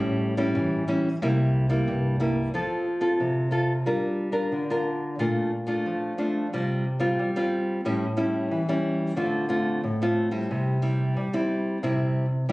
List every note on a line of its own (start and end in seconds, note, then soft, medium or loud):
0.00 0.46 A1 medium
0.00 0.53 A2 medium
0.00 0.34 G3 medium
0.00 0.35 C#4 medium
0.00 0.35 E4 medium
0.37 0.83 G3 medium
0.37 0.83 C#4 medium
0.37 0.83 E4 medium
0.55 0.83 A1 medium
0.55 1.19 E3 medium
0.88 1.08 G3 medium
0.88 1.08 C#4 medium
0.88 1.08 E4 medium
1.22 1.78 C2 loud
1.22 1.85 C3 medium
1.22 1.67 G3 medium
1.22 1.67 A#3 medium
1.22 1.67 E4 medium
1.70 2.15 G3 medium
1.70 2.15 A#3 medium
1.70 2.15 E4 medium
1.88 2.44 C2 medium
1.88 2.51 G2 medium
2.20 2.48 G3 medium
2.20 2.49 A#3 medium
2.20 2.49 E4 medium
2.54 3.17 F3 medium
2.54 2.85 C4 soft
2.54 2.85 F4 soft
2.54 2.86 A4 soft
3.01 3.47 C4 soft
3.01 3.47 F4 soft
3.01 3.47 A4 soft
3.20 3.83 C3 medium
3.51 3.72 C4 soft
3.51 3.72 F4 soft
3.51 3.72 A4 medium
3.86 4.49 G3 medium
3.86 4.31 D4 soft
3.86 4.31 F4 soft
3.86 4.31 A#4 medium
4.32 4.62 D4 soft
4.32 4.62 F4 medium
4.32 4.62 A#4 medium
4.52 5.15 D3 medium
4.70 5.14 D4 medium
4.70 5.14 F4 soft
4.70 5.15 A#4 medium
5.19 5.82 A#2 medium
5.19 5.50 A3 medium
5.19 5.50 D4 medium
5.19 5.51 F4 medium
5.67 6.12 A3 soft
5.67 6.13 D4 soft
5.67 6.13 F4 medium
5.86 6.49 F3 medium
6.18 6.46 A3 medium
6.18 6.46 D4 soft
6.18 6.47 F4 soft
6.53 7.15 C3 medium
6.53 6.84 G3 soft
6.53 6.84 C4 soft
6.53 6.84 F4 medium
7.00 7.18 G3 medium
7.00 7.29 C4 soft
7.00 7.29 F4 medium
7.19 7.35 G3 medium
7.36 7.80 G3 medium
7.36 7.80 C4 soft
7.36 7.80 F4 medium
7.85 8.48 A2 medium
7.85 8.04 G3 medium
7.85 8.04 C#4 medium
7.85 8.05 E4 medium
8.17 8.61 G3 soft
8.17 8.62 C#4 medium
8.17 8.62 E4 medium
8.51 9.14 E3 medium
8.69 9.12 G3 medium
8.69 9.13 C#4 medium
8.69 9.13 E4 medium
9.16 9.80 D3 medium
9.16 9.45 A3 medium
9.16 9.45 C4 soft
9.16 9.45 F4 medium
9.49 9.80 A3 soft
9.49 9.81 C4 soft
9.49 9.81 F4 medium
9.83 10.46 A2 medium
10.02 10.29 A3 medium
10.02 10.29 C4 medium
10.02 10.29 F4 medium
10.31 10.76 G3 medium
10.31 10.77 C4 medium
10.31 10.77 E4 medium
10.51 11.13 C3 medium
10.82 11.15 G3 medium
10.82 11.27 C4 soft
10.82 11.27 E4 medium
11.17 11.32 G3 medium
11.33 11.77 G3 medium
11.33 11.77 C4 soft
11.33 11.77 E4 medium
11.83 12.45 C3 medium
11.83 12.25 G3 soft
11.83 12.25 C4 soft
11.83 12.26 E4 medium
12.49 12.51 G3 medium